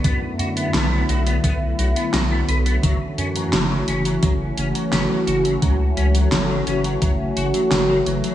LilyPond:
<<
  \new Staff \with { instrumentName = "Clean electric guitar" } { \time 4/4 \key fis \phrygian \tempo 4 = 86 b16 r16 fis'16 b16 b16 b16 fis'16 b16 b16 r16 fis'16 b16 fis'16 b16 b'16 b16 | fis16 r16 cis'16 fis16 fis16 fis16 cis'16 fis16 fis16 r16 cis'16 fis16 cis'16 fis16 fis'16 fis16 | fis16 r16 cis'16 fis16 fis16 fis16 cis'16 fis16 fis16 r16 fis'16 fis16 fis16 fis16 fis16 fis16 | }
  \new Staff \with { instrumentName = "Analog synth pad" } { \time 4/4 \key fis \phrygian << { <d b e'>1 | <e cis' fis'>1~ | <e cis' fis'>1 | } \\ { <fis a>1~ | <fis a>1~ | <fis a>1 | } >> }
  \new Staff \with { instrumentName = "Analog synth bass" } { \clef bass \time 4/4 \key fis \phrygian fis,8 fis,8 b,,8 b,,8 b,,8 b,,8 b,,8 b,,8 | fis,,8 fis,8 fis,,8 fis,,8 fis,,8 fis,,8 fis,,8 fis,,8 | cis,8 cis,8 fis,,8 fis,,8 fis,,8 fis,,8 fis,,8 fis,,8 | }
  \new DrumStaff \with { instrumentName = "Drums" } \drummode { \time 4/4 <hh bd>8 hh16 hh16 <hh sn>8 hh16 hh16 <hh bd>8 hh16 hh16 <hh sn>8 hh16 hh16 | <hh bd>8 hh16 hh16 <hh sn>8 hh16 hh16 <hh bd>8 hh16 hh16 <hh sn>8 hh16 hh16 | <hh bd>8 hh16 hh16 <hh sn>8 hh16 hh16 <hh bd>8 hh16 hh16 <hh sn>8 hh16 hh16 | }
>>